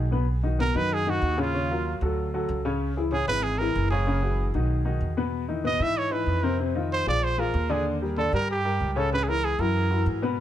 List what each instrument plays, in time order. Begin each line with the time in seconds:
Already playing: upright bass B1
0.11 grand piano B2 B3 B4
0.43 grand piano D#3 D#4 F#4
0.59 grand piano B2 B3 B4, trumpet A#4
0.74 upright bass F#2, grand piano D#3 D#4 F#4, trumpet B4
0.93 trumpet G#4
1.06 grand piano D#3 D#4 F#4, trumpet F#4
1.22 upright bass D#2
1.38 grand piano C#3 C#4 C#5, trumpet F4
1.54 grand piano C#3 C#4 C#5
1.71 grand piano F#3 F4 A#4
2.01 upright bass D2, grand piano F#3 F#4 A4
2.34 grand piano F#3 F#4 A4
2.49 upright bass C#2
2.65 grand piano C#3 C#4 C#5
2.97 grand piano E3 E4 G#4
3.12 grand piano C#3 C#4 C#5, trumpet G#4
3.28 upright bass G#1, grand piano E3 E4 G#4, trumpet B4
3.43 trumpet G#4
3.58 grand piano E3 E4 G#4, trumpet A#4
3.75 upright bass F#1
3.90 grand piano C#3 C#4 C#5, trumpet G#4
4.07 grand piano C#3 C#4 C#5
4.22 grand piano E3 E4 F#4
4.54 upright bass B1, grand piano D#3 D#4 F#4
4.85 grand piano D#3 D#4 F#4
5.01 upright bass E2
5.17 grand piano B2 B3 B4
5.48 grand piano D#3 D#4 E4
5.64 grand piano B2 B3 B4, trumpet D#5
5.79 upright bass G#2, grand piano E3 D#4 E4, trumpet E5
5.98 trumpet C#5
6.10 grand piano E3 D#4 E4, trumpet B4
6.26 upright bass F2
6.43 grand piano C3 C4 C5, trumpet A#4
6.59 grand piano C3 C4 C5
6.75 grand piano D#3 D#4 F4
6.93 trumpet C5
7.06 upright bass A#1, grand piano F3 F4 G#4, trumpet D5
7.24 trumpet C5
7.38 grand piano F3 F4 G#4, trumpet A#4
7.54 upright bass D#2
7.69 grand piano D3 D4 D5, trumpet G#4
8.02 grand piano G3 G4 A#4
8.17 grand piano D3 D4 D5, trumpet A4
8.32 upright bass G2, grand piano G3 G4 A#4, trumpet A#4
8.51 trumpet G4
8.65 grand piano G3 G4 A#4
8.80 upright bass C#2
8.93 grand piano C#3 C#4 C#5, trumpet G4
8.98 trumpet A4
9.13 grand piano C#3 C#4 C#5, trumpet B4
9.23 trumpet G#4
9.28 grand piano E3 E4 G#4, trumpet A#4
9.44 trumpet G#4
9.59 upright bass F#2, grand piano E3 E4 F#4, trumpet A#4
9.90 grand piano E3 E4 F#4
10.06 upright bass G#2
10.22 grand piano B2 B3 B4